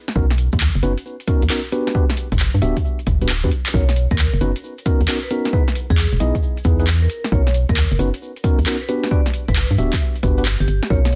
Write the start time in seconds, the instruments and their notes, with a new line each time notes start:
0.08 snare, closed hi-hat, shaker
0.16 fm bass B1, tine electric piano B3 C#4 D#4 F#4 A#4, kick, shaker
0.30 snare, closed hi-hat, shaker
0.38 closed hi-hat, shaker
0.52 fm bass D#2, kick, closed hi-hat, shaker
0.60 clap, shaker
0.75 fm bass F#1, closed hi-hat, shaker
0.83 fm bass F#1, tine electric piano B3 C#4 D#4 F#4 B4, closed hi-hat, shaker
0.98 closed hi-hat, shaker
1.05 shaker
1.20 closed hi-hat, shaker
1.27 tine electric piano B3 C#4 D#4 F#4 A#4, kick, closed hi-hat, shaker
1.42 fm bass D#2, closed hi-hat, shaker
1.50 tine electric piano B3 C#4 D#4 F#4 A#4, clap, shaker
1.65 shaker
1.72 tine electric piano B3 D4 F#4 G4 B4, closed hi-hat, shaker
1.87 snare, closed hi-hat, shaker
1.95 tine electric piano B3 D4 F#4 G4 B4, kick, shaker
2.10 snare, closed hi-hat, shaker
2.17 closed hi-hat, shaker
2.32 fm bass G1, kick, closed hi-hat, shaker
2.39 clap, shaker
2.54 fm bass G2, closed hi-hat, shaker
2.62 fm bass D1, tine electric piano B3 D4 F#4 G4 E5, closed hi-hat, shaker
2.76 kick, closed hi-hat, shaker
2.85 shaker
2.99 closed hi-hat, shaker
3.07 fm bass G1, kick, closed hi-hat, shaker
3.21 fm bass D1, tine electric piano B3 D4 F#4 G4 B4, closed hi-hat, shaker
3.29 clap, shaker
3.43 fm bass G2, tine electric piano B3 D4 F#4 G4 B4, kick, shaker
3.51 closed hi-hat, shaker
3.66 clap, closed hi-hat, shaker
3.74 fm bass B1, tine electric piano B3 C#4 D#4 F#4 A#4, vibraphone C#5, kick, shaker
3.89 snare, closed hi-hat, shaker
3.96 closed hi-hat, shaker
4.11 fm bass D#2, vibraphone A#4, kick, closed hi-hat, shaker
4.19 clap, shaker
4.33 fm bass F#1, closed hi-hat, shaker
4.41 fm bass F#1, tine electric piano B3 C#4 D#4 F#4 B4, closed hi-hat, shaker
4.56 closed hi-hat, shaker
4.64 shaker
4.78 closed hi-hat, shaker
4.85 tine electric piano B3 C#4 D#4 F#4 A#4, kick, closed hi-hat, shaker
5.01 fm bass D#2, closed hi-hat, shaker
5.08 tine electric piano B3 C#4 D#4 F#4 A#4, clap, shaker
5.23 vibraphone B4, shaker
5.31 tine electric piano B3 C#4 D#4 F#4 A#4, closed hi-hat, shaker
5.45 snare, closed hi-hat, shaker
5.53 tine electric piano B3 D#4 E4 G#4 B4, vibraphone B4, kick, shaker
5.68 snare, closed hi-hat, shaker
5.75 closed hi-hat, shaker
5.90 fm bass E2, vibraphone G#4, kick, closed hi-hat, shaker
5.98 clap, shaker
6.13 fm bass E1, closed hi-hat, shaker
6.20 fm bass B1, tine electric piano B3 D#4 E4 G#4 D#5, closed hi-hat, shaker
6.35 kick, closed hi-hat, shaker
6.43 shaker
6.57 closed hi-hat, shaker
6.64 fm bass E2, tine electric piano B3 D#4 E4 G#4 B4, kick, closed hi-hat, shaker
6.79 tine electric piano B3 D#4 E4 G#4 B4, closed hi-hat, shaker
6.87 clap, shaker
7.02 vibraphone A#4, shaker
7.10 closed hi-hat, shaker
7.24 snare, closed hi-hat, shaker
7.32 fm bass B1, tine electric piano B3 C#4 D#4 F#4 A#4, vibraphone C#5, kick, shaker
7.47 snare, closed hi-hat, shaker
7.54 closed hi-hat, shaker
7.69 fm bass D#2, vibraphone A#4, kick, closed hi-hat, shaker
7.77 clap, shaker
7.92 fm bass F#1, closed hi-hat, shaker
7.99 fm bass F#1, tine electric piano B3 C#4 D#4 F#4 B4, closed hi-hat, shaker
8.14 closed hi-hat, shaker
8.22 shaker
8.36 closed hi-hat, shaker
8.44 tine electric piano B3 C#4 D#4 F#4 A#4, kick, closed hi-hat, shaker
8.59 fm bass D#2, closed hi-hat, shaker
8.66 tine electric piano B3 C#4 D#4 F#4 A#4, clap, shaker
8.81 vibraphone B4, shaker
8.89 tine electric piano B3 D4 F#4 G4 B4, closed hi-hat, shaker
9.04 snare, closed hi-hat, shaker
9.11 tine electric piano B3 D4 F#4 G4 B4, vibraphone D5, kick, shaker
9.26 snare, closed hi-hat, shaker
9.33 closed hi-hat, shaker
9.48 fm bass G1, vibraphone B4, kick, closed hi-hat, shaker
9.56 clap, shaker
9.71 fm bass G2, closed hi-hat, shaker
9.78 fm bass D1, tine electric piano B3 D4 F#4 G4 E5, closed hi-hat, shaker
9.93 kick, clap, closed hi-hat, shaker
10.01 shaker
10.16 closed hi-hat, shaker
10.23 fm bass G1, tine electric piano B3 D4 F#4 G4 B4, kick, closed hi-hat, shaker
10.38 tine electric piano B3 D4 F#4 G4 B4, closed hi-hat, shaker
10.45 clap, shaker
10.60 fm bass G1, vibraphone G4, closed hi-hat, shaker
10.68 fm bass G1, closed hi-hat, shaker
10.82 snare, closed hi-hat, shaker
10.90 fm bass B1, tine electric piano B3 C#4 D#4 F#4 A#4, vibraphone C#5, kick, shaker
11.05 snare, closed hi-hat, high conga, shaker
11.12 shaker